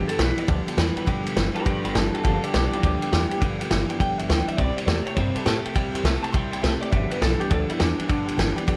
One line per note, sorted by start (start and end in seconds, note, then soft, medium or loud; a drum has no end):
0.00 0.17 G2 medium
0.00 0.18 D3 medium
0.06 0.14 F3 soft
0.06 0.15 B3 medium
0.06 0.17 F4 medium
0.06 0.17 G4 medium
0.06 0.19 A4 loud
0.06 0.15 B4 medium
0.06 0.15 D5 medium
0.06 0.15 G5 medium
0.06 muted upright bass stroke medium
0.06 ride medium
0.16 0.34 B1 medium
0.16 0.47 G2 medium
0.16 0.36 F3 medium
0.16 0.36 B3 medium
0.16 0.35 F4 medium
0.16 0.34 G4 medium
0.16 0.30 B4 medium
0.16 0.38 B4 medium
0.16 0.30 D5 medium
0.16 0.30 G5 medium
0.16 snare loud
0.16 ride medium
0.20 0.47 E3 loud
0.36 0.46 F3 soft
0.36 0.47 B3 soft
0.36 0.47 F4 medium
0.36 0.47 G4 medium
0.36 0.44 B4 medium
0.36 0.44 D5 medium
0.36 0.77 D5 medium
0.36 0.44 G5 medium
0.36 muted upright bass stroke medium
0.36 ride medium
0.47 0.63 D2 loud
0.47 0.67 G2 medium
0.47 0.76 G2 medium
0.47 0.67 D3 medium
0.47 0.76 D3 medium
0.47 0.67 F3 medium
0.47 0.66 B3 medium
0.47 0.65 F4 loud
0.47 0.64 G4 medium
0.47 0.60 B4 medium
0.47 0.60 D5 medium
0.47 0.60 G5 loud
0.47 kick loud
0.47 ride medium
0.65 0.76 F3 soft
0.65 0.77 B3 medium
0.65 0.77 F4 medium
0.65 0.77 G4 medium
0.65 0.73 B4 medium
0.65 0.74 D5 medium
0.65 0.74 G5 medium
0.65 muted upright bass stroke medium
0.65 ride medium
0.77 0.93 E2 medium
0.77 1.05 G2 loud
0.77 1.06 E3 loud
0.77 0.96 F3 medium
0.77 0.96 B3 medium
0.77 0.95 F4 medium
0.77 0.94 G4 medium
0.77 0.89 B4 medium
0.77 0.97 B4 medium
0.77 0.89 D5 medium
0.77 0.89 G5 medium
0.77 snare loud
0.77 ride loud
0.95 1.06 F3 soft
0.95 1.06 B3 medium
0.95 1.07 F4 medium
0.95 1.06 G4 medium
0.95 1.03 B4 medium
0.95 1.08 B4 medium
0.95 1.03 D5 medium
0.95 1.03 G5 medium
0.95 muted upright bass stroke medium
0.95 ride medium
1.05 1.22 G1 loud
1.05 1.26 G2 medium
1.05 1.35 G2 medium
1.05 1.26 D3 medium
1.05 1.35 D3 medium
1.05 1.26 F3 medium
1.05 1.25 B3 medium
1.05 1.24 F4 medium
1.05 1.36 G4 medium
1.05 1.23 G4 medium
1.05 1.18 B4 loud
1.05 1.18 D5 medium
1.05 1.18 G5 loud
1.05 kick loud
1.05 ride medium
1.24 1.34 B1 medium
1.24 1.33 F3 soft
1.24 1.34 B3 medium
1.24 1.35 F4 medium
1.24 1.35 G4 medium
1.24 1.32 B4 medium
1.24 1.32 D5 medium
1.24 1.32 G5 medium
1.24 ride medium
1.35 1.51 G1 medium
1.35 1.64 G2 medium
1.35 1.65 E3 medium
1.35 1.55 F3 medium
1.35 1.54 B3 medium
1.35 1.54 F4 medium
1.35 1.52 G4 medium
1.35 1.47 B4 medium
1.35 1.48 D5 medium
1.35 1.48 G5 medium
1.35 snare loud
1.35 ride medium
1.53 1.65 F3 soft
1.53 1.65 B3 soft
1.53 1.65 F4 medium
1.53 1.65 G4 medium
1.53 1.64 G4 medium
1.53 1.61 B4 medium
1.53 1.66 B4 medium
1.53 1.62 D5 medium
1.53 1.62 G5 medium
1.53 muted upright bass stroke medium
1.53 ride medium
1.65 1.81 G1 medium
1.65 1.84 G2 medium
1.65 1.93 G2 medium
1.65 1.85 D3 medium
1.65 1.94 D3 loud
1.65 1.85 F3 medium
1.65 1.84 B3 medium
1.65 1.83 F4 medium
1.65 1.83 G4 medium
1.65 1.82 G4 medium
1.65 1.77 B4 medium
1.65 1.84 B4 medium
1.65 1.77 D5 medium
1.65 1.77 G5 loud
1.65 kick loud
1.65 ride medium
1.83 1.93 G1 loud
1.83 1.94 F3 soft
1.83 1.95 B3 medium
1.83 1.95 F4 medium
1.83 1.94 G4 medium
1.83 1.95 G4 medium
1.83 1.91 B4 medium
1.83 1.96 B4 medium
1.83 1.91 D5 medium
1.83 1.91 G5 medium
1.83 ride medium
1.94 2.10 G1 medium
1.94 2.24 G2 loud
1.94 2.14 F3 medium
1.94 2.13 B3 medium
1.94 2.13 F4 medium
1.94 2.13 A4 medium
1.94 2.06 B4 medium
1.94 2.06 D5 medium
1.94 2.06 G5 medium
1.94 snare loud
1.94 ride medium
1.98 2.24 E3 medium
1.98 2.11 G4 medium
2.13 2.23 F3 soft
2.13 2.23 B3 soft
2.13 2.24 F4 soft
2.13 2.23 F4 medium
2.13 2.24 G4 soft
2.13 2.23 A4 medium
2.13 2.20 B4 medium
2.13 2.20 D5 medium
2.13 2.20 G5 medium
2.13 muted upright bass stroke medium
2.13 ride medium
2.23 2.40 G1 medium
2.23 2.43 G2 medium
2.23 2.52 G2 medium
2.23 2.43 D3 medium
2.23 2.53 D3 medium
2.23 2.43 F3 medium
2.23 2.42 B3 medium
2.23 2.43 F4 medium
2.23 2.42 F4 loud
2.23 2.40 G4 medium
2.23 2.44 A4 medium
2.23 2.35 B4 loud
2.23 2.36 D5 medium
2.23 2.36 G5 loud
2.23 kick loud
2.23 ride medium
2.41 2.52 F3 soft
2.41 2.53 B3 medium
2.41 2.53 D4 medium
2.41 2.54 F4 medium
2.41 2.53 G4 medium
2.41 2.54 G4 loud
2.41 2.49 B4 medium
2.41 2.49 D5 medium
2.41 2.49 G5 medium
2.41 muted upright bass stroke medium
2.41 ride medium
2.53 2.69 B1 medium
2.53 2.82 G2 medium
2.53 2.82 E3 loud
2.53 2.72 F3 medium
2.53 2.72 B3 medium
2.53 2.72 D4 medium
2.53 2.72 G4 loud
2.53 2.65 B4 medium
2.53 2.65 D5 medium
2.53 2.65 G5 medium
2.53 snare loud
2.53 ride medium
2.71 2.83 F3 medium
2.71 2.83 B3 soft
2.71 2.83 D4 medium
2.71 2.83 F4 medium
2.71 2.83 G4 medium
2.71 2.82 G4 medium
2.71 2.79 B4 medium
2.71 2.79 D5 medium
2.71 2.79 G5 medium
2.71 muted upright bass stroke medium
2.71 ride medium
2.82 2.99 D2 medium
2.82 3.02 G2 medium
2.82 3.11 G2 medium
2.82 3.02 D3 medium
2.82 3.11 D3 medium
2.82 3.03 F3 medium
2.82 3.02 B3 medium
2.82 3.01 F4 medium
2.82 3.40 G4 loud
2.82 3.00 G4 medium
2.82 2.94 B4 loud
2.82 2.95 D5 medium
2.82 2.95 G5 loud
2.82 kick loud
2.82 ride medium
3.01 3.11 F3 soft
3.01 3.13 B3 medium
3.01 3.13 F4 medium
3.01 3.12 G4 medium
3.01 3.08 B4 medium
3.01 3.09 D5 medium
3.01 3.08 G5 medium
3.01 muted upright bass stroke medium
3.01 ride medium
3.12 3.28 E2 medium
3.12 3.41 G2 medium
3.12 3.41 E3 medium
3.12 3.31 F3 medium
3.12 3.32 B3 medium
3.12 3.32 F4 medium
3.12 3.31 G4 medium
3.12 3.23 B4 medium
3.12 3.23 D5 medium
3.12 3.24 G5 medium
3.12 snare loud
3.12 ride medium
3.31 3.42 B3 medium
3.31 3.42 F4 medium
3.31 3.42 G4 medium
3.31 3.37 B4 medium
3.31 3.37 D5 medium
3.31 3.38 G5 medium
3.31 muted upright bass stroke medium
3.31 ride medium
3.35 3.42 F3 soft
3.40 3.57 G1 loud
3.40 3.61 G2 medium
3.40 3.69 G2 medium
3.40 3.61 D3 medium
3.40 3.70 D3 medium
3.40 3.61 F3 medium
3.40 3.61 B3 medium
3.40 3.61 F4 loud
3.40 3.60 G4 loud
3.40 3.52 B4 loud
3.40 3.52 D5 loud
3.40 3.53 G5 loud
3.40 kick loud
3.40 ride medium
3.60 3.69 B1 medium
3.60 3.71 B3 medium
3.60 3.72 F4 medium
3.60 3.71 G4 medium
3.60 3.66 B4 medium
3.60 3.67 D5 medium
3.60 3.67 G5 medium
3.60 ride medium
3.64 3.69 F3 medium
3.70 3.86 G1 medium
3.70 3.99 G2 medium
3.70 3.99 E3 loud
3.70 3.90 F3 medium
3.70 3.90 B3 medium
3.70 3.90 F4 medium
3.70 3.89 G4 medium
3.70 3.82 B4 medium
3.70 3.82 D5 medium
3.70 3.82 G5 medium
3.70 snare loud
3.70 ride medium
3.89 4.01 B3 medium
3.89 4.01 F4 medium
3.89 4.00 G4 medium
3.89 3.96 B4 medium
3.89 3.96 D5 medium
3.89 3.96 G5 loud
3.89 muted upright bass stroke medium
3.89 ride medium
3.93 4.00 F3 medium
3.99 4.15 G1 loud
3.99 4.19 G2 medium
3.99 4.28 G2 medium
3.99 4.20 D3 medium
3.99 4.28 D3 medium
3.99 4.20 F3 medium
3.99 4.19 B3 medium
3.99 4.19 F4 medium
3.99 4.18 G4 loud
3.99 4.11 B4 medium
3.99 4.11 D5 medium
3.99 4.11 G5 loud
3.99 4.18 G5 loud
3.99 kick loud
3.99 ride medium
4.18 4.27 G1 loud
4.18 4.27 F3 medium
4.18 4.29 B3 soft
4.18 4.30 F4 medium
4.18 4.29 G4 medium
4.18 4.25 B4 medium
4.18 4.25 D5 medium
4.18 4.29 E5 loud
4.18 4.25 G5 medium
4.18 ride medium
4.27 4.45 D2 medium
4.27 4.57 G2 medium
4.27 4.57 E3 medium
4.27 4.48 F3 medium
4.27 4.48 F4 medium
4.27 4.40 B4 medium
4.27 4.40 D5 medium
4.27 4.40 G5 medium
4.27 4.47 G5 medium
4.27 snare loud
4.27 ride medium
4.32 4.46 G4 medium
4.47 4.58 F3 soft
4.47 4.59 B3 soft
4.47 4.59 F4 soft
4.47 4.58 G4 medium
4.47 4.54 B4 medium
4.47 4.55 D5 medium
4.47 4.58 E5 medium
4.47 4.55 G5 medium
4.47 muted upright bass stroke medium
4.47 ride medium
4.57 4.73 C2 loud
4.57 4.77 C3 medium
4.57 4.86 C3 medium
4.57 4.78 G3 medium
4.57 4.86 G3 loud
4.57 4.78 A#3 medium
4.57 4.77 E4 medium
4.57 4.76 G4 medium
4.57 4.69 C5 medium
4.57 4.76 D5 medium
4.57 4.69 E5 medium
4.57 4.69 G5 loud
4.57 kick loud
4.57 ride medium
4.76 4.87 A#3 soft
4.76 4.88 E4 soft
4.76 4.88 G4 medium
4.76 4.83 C5 medium
4.76 4.86 C5 medium
4.76 4.83 E5 medium
4.76 4.84 G5 medium
4.76 muted upright bass stroke medium
4.76 ride medium
4.86 5.02 E2 medium
4.86 5.16 C3 medium
4.86 5.06 G3 medium
4.86 5.16 A3 medium
4.86 5.07 A#3 medium
4.86 5.06 E4 medium
4.86 5.04 G4 medium
4.86 4.99 C5 medium
4.86 5.05 D5 medium
4.86 4.99 E5 medium
4.86 4.99 G5 medium
4.86 snare loud
4.86 ride medium
5.05 5.16 A#3 soft
5.05 5.16 E4 medium
5.05 5.17 G4 medium
5.05 5.13 C5 medium
5.05 5.15 C#5 loud
5.05 5.12 E5 medium
5.05 5.13 G5 medium
5.05 muted upright bass stroke medium
5.05 ride medium
5.16 5.32 G2 medium
5.16 5.36 C3 medium
5.16 5.44 C3 medium
5.16 5.36 G3 medium
5.16 5.45 G3 medium
5.16 5.36 A#3 medium
5.16 5.34 E4 medium
5.16 5.33 G4 medium
5.16 5.35 C5 loud
5.16 5.28 C5 medium
5.16 5.28 E5 medium
5.16 5.28 G5 loud
5.16 kick loud
5.16 ride medium
5.34 5.44 A#3 soft
5.34 5.45 E4 medium
5.34 5.45 G4 medium
5.34 5.45 A4 medium
5.34 5.42 C5 medium
5.34 5.43 E5 medium
5.34 5.43 G5 medium
5.34 muted upright bass stroke medium
5.34 ride medium
5.44 5.61 A2 medium
5.44 5.73 C3 medium
5.44 5.64 G3 medium
5.44 5.74 A3 loud
5.44 5.64 E4 medium
5.44 6.02 G4 loud
5.44 5.63 G4 medium
5.44 5.58 C5 medium
5.44 5.58 E5 medium
5.44 5.58 G5 medium
5.44 snare loud
5.44 ride medium
5.64 5.74 A#3 soft
5.64 5.74 E4 soft
5.64 5.75 G4 medium
5.64 5.71 C5 medium
5.64 5.71 E5 medium
5.64 5.72 G5 medium
5.64 muted upright bass stroke medium
5.64 ride medium
5.74 5.91 C2 loud
5.74 5.94 C3 medium
5.74 6.03 C3 medium
5.74 5.94 G3 medium
5.74 6.03 G3 medium
5.74 5.94 A#3 medium
5.74 5.93 E4 medium
5.74 5.91 G4 medium
5.74 5.87 C5 loud
5.74 5.87 E5 medium
5.74 5.87 G5 loud
5.74 kick loud
5.74 ride medium
5.92 6.02 E2 medium
5.92 6.03 A#3 medium
5.92 6.05 E4 medium
5.92 6.04 G4 medium
5.92 6.00 C5 medium
5.92 6.00 E5 medium
5.92 6.00 G5 loud
5.92 ride medium
6.03 6.19 C2 loud
6.03 6.32 C3 medium
6.03 6.23 G3 medium
6.03 6.32 A3 loud
6.03 6.24 A#3 medium
6.03 6.23 E4 medium
6.03 6.21 G4 medium
6.03 6.15 C5 medium
6.03 6.16 E5 medium
6.03 6.16 G5 medium
6.03 snare loud
6.03 ride medium
6.22 6.32 A#3 soft
6.22 6.33 E4 medium
6.22 6.33 G4 medium
6.22 6.29 C5 medium
6.22 6.30 E5 medium
6.22 6.30 G5 medium
6.22 6.32 A5 medium
6.22 muted upright bass stroke medium
6.22 ride medium
6.32 6.49 C2 loud
6.32 6.52 C3 medium
6.32 6.61 C3 medium
6.32 6.52 G3 medium
6.32 6.62 G3 loud
6.32 6.52 A#3 loud
6.32 6.51 E4 loud
6.32 6.50 G4 loud
6.32 6.45 C5 medium
6.32 6.45 E5 medium
6.32 6.46 G5 loud
6.32 6.52 C6 loud
6.32 kick loud
6.32 ride medium
6.51 6.61 C2 loud
6.51 6.62 A#3 medium
6.51 6.62 E4 medium
6.51 6.62 G4 medium
6.51 6.59 C5 medium
6.51 6.59 E5 medium
6.51 6.62 G5 loud
6.51 6.59 G5 medium
6.51 ride medium
6.62 6.78 C2 medium
6.62 6.90 C3 medium
6.62 6.81 G3 medium
6.62 6.91 A3 loud
6.62 6.82 A#3 medium
6.62 6.81 E4 medium
6.62 6.80 G4 medium
6.62 6.74 C5 medium
6.62 6.81 E5 medium
6.62 6.74 E5 medium
6.62 6.75 G5 medium
6.62 snare loud
6.62 ride medium
6.81 6.92 A#3 soft
6.81 6.93 E4 soft
6.81 6.92 G4 medium
6.81 6.88 C5 medium
6.81 6.91 D5 loud
6.81 6.88 E5 medium
6.81 6.88 G5 medium
6.81 muted upright bass stroke medium
6.81 ride medium
6.91 7.08 G1 loud
6.91 7.11 G2 medium
6.91 7.20 G2 medium
6.91 7.11 D3 medium
6.91 7.20 D3 loud
6.91 7.11 F3 medium
6.91 7.11 B3 loud
6.91 7.10 F4 loud
6.91 7.09 G4 medium
6.91 7.03 B4 loud
6.91 7.03 D5 medium
6.91 7.10 E5 medium
6.91 7.04 G5 loud
6.91 kick loud
6.91 ride medium
7.10 7.20 F3 soft
7.10 7.21 B3 medium
7.10 7.22 F4 medium
7.10 7.21 G4 medium
7.10 7.17 B4 medium
7.10 7.21 B4 loud
7.10 7.17 D5 medium
7.10 7.17 G5 medium
7.10 muted upright bass stroke medium
7.10 ride medium
7.21 7.37 B1 medium
7.21 7.49 G2 medium
7.21 7.49 E3 medium
7.21 7.40 F3 medium
7.21 7.41 B3 medium
7.21 7.40 F4 medium
7.21 7.38 G4 medium
7.21 7.40 A4 loud
7.21 7.32 B4 medium
7.21 7.33 D5 medium
7.21 7.33 G5 medium
7.21 snare loud
7.21 ride medium
7.39 7.50 F3 soft
7.39 7.51 B3 medium
7.39 7.51 F4 medium
7.39 7.51 G4 medium
7.39 7.50 G4 medium
7.39 7.46 B4 medium
7.39 7.46 D5 medium
7.39 7.46 G5 loud
7.39 muted upright bass stroke medium
7.39 ride medium
7.49 7.66 D2 loud
7.49 7.69 G2 medium
7.49 7.78 G2 medium
7.49 7.70 D3 medium
7.49 7.78 D3 medium
7.49 7.70 F3 medium
7.49 7.70 B3 medium
7.49 7.69 F4 medium
7.49 7.68 G4 medium
7.49 7.69 A4 loud
7.49 7.62 B4 medium
7.49 7.62 D5 medium
7.49 7.62 G5 loud
7.49 kick loud
7.49 ride medium
7.68 7.80 B3 medium
7.68 7.80 E4 loud
7.68 7.80 F4 medium
7.68 7.80 G4 medium
7.68 7.75 B4 medium
7.68 7.75 D5 medium
7.68 7.76 G5 medium
7.68 muted upright bass stroke medium
7.68 ride medium
7.72 7.79 F3 soft
7.78 7.95 E2 loud
7.78 8.07 G2 medium
7.78 8.08 E3 loud
7.78 7.99 F3 medium
7.78 7.99 B3 medium
7.78 7.98 D4 loud
7.78 7.90 B4 medium
7.78 7.91 D5 medium
7.78 7.91 G5 medium
7.78 snare loud
7.78 ride medium
7.97 8.08 F3 soft
7.97 8.08 B3 medium
7.97 8.56 D4 loud
7.97 8.09 F4 medium
7.97 8.09 G4 medium
7.97 8.04 B4 medium
7.97 8.04 D5 medium
7.97 8.04 G5 medium
7.97 muted upright bass stroke medium
7.97 ride medium
8.07 8.24 G1 loud
8.07 8.28 G2 medium
8.07 8.37 G2 medium
8.07 8.28 D3 medium
8.07 8.37 D3 loud
8.07 8.28 F3 medium
8.07 8.28 B3 medium
8.07 8.27 F4 medium
8.07 8.26 G4 loud
8.07 8.20 B4 medium
8.07 8.20 D5 medium
8.07 8.20 G5 loud
8.07 kick loud
8.07 ride medium
8.26 8.36 B1 medium
8.26 8.36 B3 medium
8.26 8.37 F4 medium
8.26 8.38 G4 medium
8.26 8.33 B4 medium
8.26 8.33 D5 medium
8.26 8.33 G5 medium
8.26 ride medium
8.30 8.36 F3 soft
8.36 8.53 G1 loud
8.36 8.66 G2 medium
8.36 8.66 E3 medium
8.36 8.56 F3 medium
8.36 8.56 B3 medium
8.36 8.56 F4 medium
8.36 8.55 G4 medium
8.36 8.49 B4 medium
8.36 8.49 D5 medium
8.36 8.49 G5 loud
8.36 snare loud
8.36 ride medium
8.55 8.66 F3 medium
8.55 8.67 B3 medium
8.55 8.67 F4 medium
8.55 8.67 G4 medium
8.55 8.62 B4 medium
8.55 8.63 D5 medium
8.55 8.63 G5 loud
8.55 muted upright bass stroke medium
8.55 ride medium
8.67 8.77 G1 medium
8.67 8.77 G2 medium
8.67 8.77 D3 loud
8.67 8.77 D3 medium
8.67 8.77 F3 loud
8.67 8.77 B3 loud
8.67 8.77 F4 loud
8.67 8.77 G4 loud
8.67 8.77 B4 loud
8.67 8.77 D5 loud
8.67 8.77 G5 loud
8.67 kick loud
8.67 ride loud